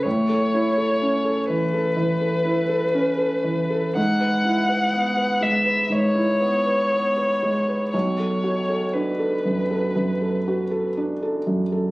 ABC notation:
X:1
M:4/4
L:1/16
Q:1/4=60
K:A
V:1 name="Violin"
c6 B8- B2 | f6 e2 c8 | c4 B8 z4 |]
V:2 name="Felt piano"
A,, A E A C A E, A E, A E A C A E, A | G,, B E B B, B G, B G,, E B, B B, B G, B | B,,, A F A D A F,, A F,, A F A D A F,, A |]